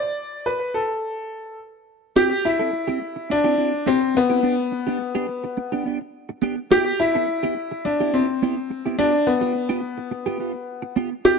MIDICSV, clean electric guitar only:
0, 0, Header, 1, 3, 480
1, 0, Start_track
1, 0, Tempo, 568182
1, 1832, Time_signature, 4, 2, 24, 8
1, 9621, End_track
2, 0, Start_track
2, 0, Title_t, "Clean electric guitar"
2, 0, Program_c, 0, 27
2, 1825, Note_on_c, 0, 60, 89
2, 1832, Note_on_c, 0, 64, 93
2, 1835, Note_on_c, 0, 67, 103
2, 1944, Note_off_c, 0, 67, 0
2, 1953, Note_off_c, 0, 64, 0
2, 1962, Note_off_c, 0, 60, 0
2, 2190, Note_on_c, 0, 69, 64
2, 2198, Note_on_c, 0, 64, 55
2, 2202, Note_on_c, 0, 60, 49
2, 2288, Note_off_c, 0, 69, 0
2, 2292, Note_off_c, 0, 64, 0
2, 2294, Note_off_c, 0, 60, 0
2, 2428, Note_on_c, 0, 67, 78
2, 2434, Note_on_c, 0, 64, 83
2, 2440, Note_on_c, 0, 60, 78
2, 2536, Note_off_c, 0, 60, 0
2, 2539, Note_off_c, 0, 64, 0
2, 2543, Note_off_c, 0, 67, 0
2, 2907, Note_on_c, 0, 67, 87
2, 2913, Note_on_c, 0, 64, 75
2, 2917, Note_on_c, 0, 60, 62
2, 3010, Note_off_c, 0, 60, 0
2, 3014, Note_off_c, 0, 64, 0
2, 3020, Note_off_c, 0, 67, 0
2, 3020, Note_on_c, 0, 60, 52
2, 3024, Note_on_c, 0, 64, 60
2, 3030, Note_on_c, 0, 67, 63
2, 3131, Note_off_c, 0, 60, 0
2, 3133, Note_off_c, 0, 64, 0
2, 3136, Note_off_c, 0, 67, 0
2, 3263, Note_on_c, 0, 60, 86
2, 3268, Note_on_c, 0, 64, 75
2, 3272, Note_on_c, 0, 67, 96
2, 3380, Note_off_c, 0, 67, 0
2, 3387, Note_off_c, 0, 64, 0
2, 3400, Note_off_c, 0, 60, 0
2, 3628, Note_on_c, 0, 67, 62
2, 3634, Note_on_c, 0, 64, 60
2, 3638, Note_on_c, 0, 60, 51
2, 3726, Note_off_c, 0, 67, 0
2, 3729, Note_off_c, 0, 64, 0
2, 3731, Note_off_c, 0, 60, 0
2, 3741, Note_on_c, 0, 59, 95
2, 3746, Note_on_c, 0, 62, 100
2, 3749, Note_on_c, 0, 67, 110
2, 3860, Note_off_c, 0, 67, 0
2, 3867, Note_off_c, 0, 62, 0
2, 3879, Note_off_c, 0, 59, 0
2, 4111, Note_on_c, 0, 67, 73
2, 4118, Note_on_c, 0, 62, 60
2, 4123, Note_on_c, 0, 59, 57
2, 4207, Note_off_c, 0, 67, 0
2, 4210, Note_off_c, 0, 62, 0
2, 4213, Note_off_c, 0, 59, 0
2, 4349, Note_on_c, 0, 67, 91
2, 4352, Note_on_c, 0, 62, 84
2, 4356, Note_on_c, 0, 59, 68
2, 4454, Note_off_c, 0, 59, 0
2, 4458, Note_off_c, 0, 62, 0
2, 4459, Note_off_c, 0, 67, 0
2, 4833, Note_on_c, 0, 67, 77
2, 4841, Note_on_c, 0, 62, 70
2, 4845, Note_on_c, 0, 59, 64
2, 4936, Note_off_c, 0, 59, 0
2, 4942, Note_off_c, 0, 62, 0
2, 4946, Note_on_c, 0, 59, 65
2, 4950, Note_off_c, 0, 67, 0
2, 4952, Note_on_c, 0, 62, 71
2, 4960, Note_on_c, 0, 67, 66
2, 5052, Note_off_c, 0, 59, 0
2, 5055, Note_off_c, 0, 62, 0
2, 5059, Note_off_c, 0, 67, 0
2, 5422, Note_on_c, 0, 59, 89
2, 5429, Note_on_c, 0, 62, 97
2, 5433, Note_on_c, 0, 67, 92
2, 5546, Note_off_c, 0, 67, 0
2, 5551, Note_off_c, 0, 62, 0
2, 5558, Note_off_c, 0, 59, 0
2, 5665, Note_on_c, 0, 59, 87
2, 5670, Note_on_c, 0, 64, 97
2, 5675, Note_on_c, 0, 67, 92
2, 5788, Note_off_c, 0, 67, 0
2, 5794, Note_off_c, 0, 64, 0
2, 5839, Note_off_c, 0, 59, 0
2, 6040, Note_on_c, 0, 69, 68
2, 6043, Note_on_c, 0, 64, 65
2, 6049, Note_on_c, 0, 59, 53
2, 6130, Note_off_c, 0, 69, 0
2, 6132, Note_off_c, 0, 64, 0
2, 6134, Note_off_c, 0, 59, 0
2, 6277, Note_on_c, 0, 67, 87
2, 6283, Note_on_c, 0, 64, 83
2, 6288, Note_on_c, 0, 59, 73
2, 6379, Note_off_c, 0, 59, 0
2, 6383, Note_off_c, 0, 64, 0
2, 6385, Note_off_c, 0, 67, 0
2, 6761, Note_on_c, 0, 67, 73
2, 6765, Note_on_c, 0, 64, 65
2, 6771, Note_on_c, 0, 59, 56
2, 6865, Note_off_c, 0, 59, 0
2, 6870, Note_off_c, 0, 64, 0
2, 6875, Note_off_c, 0, 67, 0
2, 6875, Note_on_c, 0, 59, 60
2, 6880, Note_on_c, 0, 64, 69
2, 6885, Note_on_c, 0, 67, 69
2, 6976, Note_off_c, 0, 59, 0
2, 6978, Note_off_c, 0, 64, 0
2, 6981, Note_off_c, 0, 67, 0
2, 7116, Note_on_c, 0, 59, 88
2, 7121, Note_on_c, 0, 64, 85
2, 7124, Note_on_c, 0, 67, 98
2, 7234, Note_off_c, 0, 67, 0
2, 7242, Note_off_c, 0, 64, 0
2, 7245, Note_off_c, 0, 59, 0
2, 7481, Note_on_c, 0, 67, 55
2, 7486, Note_on_c, 0, 64, 52
2, 7488, Note_on_c, 0, 59, 53
2, 7570, Note_off_c, 0, 67, 0
2, 7573, Note_off_c, 0, 64, 0
2, 7574, Note_off_c, 0, 59, 0
2, 7590, Note_on_c, 0, 59, 101
2, 7594, Note_on_c, 0, 65, 101
2, 7598, Note_on_c, 0, 67, 109
2, 7707, Note_off_c, 0, 67, 0
2, 7713, Note_off_c, 0, 65, 0
2, 7721, Note_off_c, 0, 59, 0
2, 7950, Note_on_c, 0, 67, 65
2, 7954, Note_on_c, 0, 65, 63
2, 7960, Note_on_c, 0, 59, 57
2, 8045, Note_off_c, 0, 67, 0
2, 8047, Note_off_c, 0, 65, 0
2, 8050, Note_off_c, 0, 59, 0
2, 8187, Note_on_c, 0, 67, 90
2, 8190, Note_on_c, 0, 65, 85
2, 8194, Note_on_c, 0, 59, 75
2, 8293, Note_off_c, 0, 59, 0
2, 8299, Note_off_c, 0, 65, 0
2, 8301, Note_off_c, 0, 67, 0
2, 8668, Note_on_c, 0, 67, 84
2, 8676, Note_on_c, 0, 65, 66
2, 8677, Note_on_c, 0, 59, 65
2, 8770, Note_off_c, 0, 59, 0
2, 8776, Note_off_c, 0, 65, 0
2, 8780, Note_off_c, 0, 67, 0
2, 8780, Note_on_c, 0, 59, 55
2, 8786, Note_on_c, 0, 65, 65
2, 8791, Note_on_c, 0, 67, 60
2, 8889, Note_off_c, 0, 59, 0
2, 8892, Note_off_c, 0, 65, 0
2, 8894, Note_off_c, 0, 67, 0
2, 9260, Note_on_c, 0, 59, 78
2, 9264, Note_on_c, 0, 65, 85
2, 9269, Note_on_c, 0, 67, 92
2, 9382, Note_off_c, 0, 67, 0
2, 9389, Note_off_c, 0, 65, 0
2, 9397, Note_off_c, 0, 59, 0
2, 9504, Note_on_c, 0, 60, 84
2, 9510, Note_on_c, 0, 64, 101
2, 9513, Note_on_c, 0, 67, 94
2, 9621, Note_off_c, 0, 60, 0
2, 9621, Note_off_c, 0, 64, 0
2, 9621, Note_off_c, 0, 67, 0
2, 9621, End_track
3, 0, Start_track
3, 0, Title_t, "Muted clean electric guitar strokes"
3, 1954, Note_on_c, 9, 29, 46
3, 2038, Note_off_c, 9, 29, 0
3, 2068, Note_on_c, 9, 29, 51
3, 2152, Note_off_c, 9, 29, 0
3, 2304, Note_on_c, 9, 29, 47
3, 2389, Note_off_c, 9, 29, 0
3, 2546, Note_on_c, 9, 29, 50
3, 2630, Note_off_c, 9, 29, 0
3, 2669, Note_on_c, 9, 29, 41
3, 2754, Note_off_c, 9, 29, 0
3, 2786, Note_on_c, 9, 29, 43
3, 2870, Note_off_c, 9, 29, 0
3, 3151, Note_on_c, 9, 29, 54
3, 3236, Note_off_c, 9, 29, 0
3, 3391, Note_on_c, 9, 29, 42
3, 3475, Note_off_c, 9, 29, 0
3, 3501, Note_on_c, 9, 29, 40
3, 3585, Note_off_c, 9, 29, 0
3, 3871, Note_on_c, 9, 29, 53
3, 3955, Note_off_c, 9, 29, 0
3, 3985, Note_on_c, 9, 29, 42
3, 4069, Note_off_c, 9, 29, 0
3, 4229, Note_on_c, 9, 29, 46
3, 4313, Note_off_c, 9, 29, 0
3, 4464, Note_on_c, 9, 29, 51
3, 4548, Note_off_c, 9, 29, 0
3, 4592, Note_on_c, 9, 29, 54
3, 4677, Note_off_c, 9, 29, 0
3, 4707, Note_on_c, 9, 29, 43
3, 4791, Note_off_c, 9, 29, 0
3, 5077, Note_on_c, 9, 29, 47
3, 5162, Note_off_c, 9, 29, 0
3, 5314, Note_on_c, 9, 29, 48
3, 5399, Note_off_c, 9, 29, 0
3, 5556, Note_on_c, 9, 29, 38
3, 5640, Note_off_c, 9, 29, 0
3, 5798, Note_on_c, 9, 29, 52
3, 5883, Note_off_c, 9, 29, 0
3, 5910, Note_on_c, 9, 29, 55
3, 5995, Note_off_c, 9, 29, 0
3, 6153, Note_on_c, 9, 29, 43
3, 6237, Note_off_c, 9, 29, 0
3, 6389, Note_on_c, 9, 29, 49
3, 6474, Note_off_c, 9, 29, 0
3, 6516, Note_on_c, 9, 29, 53
3, 6601, Note_off_c, 9, 29, 0
3, 6630, Note_on_c, 9, 29, 52
3, 6715, Note_off_c, 9, 29, 0
3, 7004, Note_on_c, 9, 29, 50
3, 7088, Note_off_c, 9, 29, 0
3, 7244, Note_on_c, 9, 29, 48
3, 7328, Note_off_c, 9, 29, 0
3, 7350, Note_on_c, 9, 29, 37
3, 7435, Note_off_c, 9, 29, 0
3, 7717, Note_on_c, 9, 29, 44
3, 7802, Note_off_c, 9, 29, 0
3, 7829, Note_on_c, 9, 29, 41
3, 7913, Note_off_c, 9, 29, 0
3, 8066, Note_on_c, 9, 29, 48
3, 8150, Note_off_c, 9, 29, 0
3, 8303, Note_on_c, 9, 29, 53
3, 8387, Note_off_c, 9, 29, 0
3, 8427, Note_on_c, 9, 29, 51
3, 8512, Note_off_c, 9, 29, 0
3, 8542, Note_on_c, 9, 29, 42
3, 8626, Note_off_c, 9, 29, 0
3, 8903, Note_on_c, 9, 29, 50
3, 8987, Note_off_c, 9, 29, 0
3, 9143, Note_on_c, 9, 29, 54
3, 9228, Note_off_c, 9, 29, 0
3, 9393, Note_on_c, 9, 29, 35
3, 9477, Note_off_c, 9, 29, 0
3, 9621, End_track
0, 0, End_of_file